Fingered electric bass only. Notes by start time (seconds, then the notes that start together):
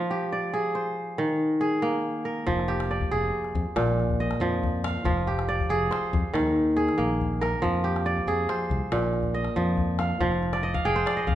2.48 F1
3.12 F1
3.55 F2
3.76 A#1
4.40 F2
5.04 F1
5.69 F1
6.13 F2
6.34 D#2
6.99 A#1
7.64 F2
8.27 F2
8.71 C2
8.92 A#1
9.57 F2
10.21 F1
10.85 F1
11.27 F2